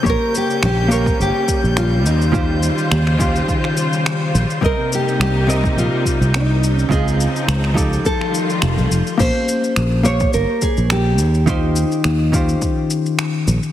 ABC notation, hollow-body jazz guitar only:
X:1
M:4/4
L:1/8
Q:"Swing 16ths" 1/4=105
K:Bbdor
V:1 name="Hollow-body jazz guitar"
[B,Gcd]3 [B,Gcd]4 z | [E,DFGc]3 [E,DFGc]4- [E,DFGc] | [C,CBe]3 [C,CBe]4- [C,CBe] | [D,CFe]3 [F,EG=A]4- [F,EGA] |
[B,DGc]3 [B,Gcd]4 z | [E,DFGc]3 [E,DFGc]4- [E,DFGc] |]